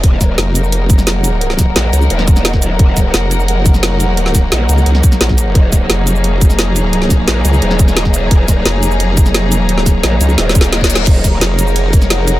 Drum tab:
CC |------------------------------------------------|------------------------------------------------|------------------------------------------------|------------------------------------------------|
RD |------------------------------------------------|------------------------------------------------|------------------------------------------------|------------------------------------------------|
HH |x-----x-----x-----x-----x-----x-----x-----x-----|x-----x-----x-----x-----x-----x-----x-----x-----|x-----x-----x-----x-----x-----x-----x-----x-----|x-----x-----x-----x-----x-----x-----x-----x-----|
SH |------x-----------x--x--------x--x--------x-----|------x-----------x--x--------x--x--------x-----|------x-----------x--x--------x--x--------x-----|------x-----------x--x--------x--x--------x-----|
SD |------o-----o--------------------o--o-----------|---o--o-----o--------------o-----o--o--o--------|------o-----o--------------------o--o-----------|---o--o-----o--------------o-----o--o--o--------|
BD |o-----o-----------------------o-----------------|------o-----------------------o--------o--------|o-----o-----------------------o-----------------|------o-----------------------o--------o--------|

CC |------------------------------------------------|------------------------------------------------|------------------------------------------------|------------------------------------------------|
RD |------------------------------------------------|------------------------------------------------|------------------------------------------------|------------------------------------------------|
HH |x-----x-----x-----x-----x-----x-----x-----x-----|x-----x-----x-----x-----x-----x-----x-----x-----|x-----x-----x-----x-----x-----x-----x-----x-----|x-----x-----x-----x-----x-----x-----x-----x-----|
SH |------x-----------x--x--------x--x--------x-----|------x-----------x--x--------x--x--------x-----|------x-----------x--x--------x--x--------x-----|------x-----------x--x--------x--x--------x-----|
SD |------o-----o--------------------o--o-----------|---o--o-----o--------------o-----o--o--o--------|------o-----o--------------------o--o-----------|---o--o-----o-----------o---o---o---o---o---o---|
BD |o-----o-----------------------o-----------------|------o-----------------------o--------o--------|o-----o-----------------------o-----------------|------o-----------------------o--------o--------|

CC |x-----------------------------------------------|
RD |b-----------b-----------b-----------b-----------|
HH |x-----x-----x-----x-----x-----x-----x-----x-----|
SH |------x-----------x--x--------x--x--------x-----|
SD |------o-----o--------------------o--o-----------|
BD |o-----o-----------------------o-----------------|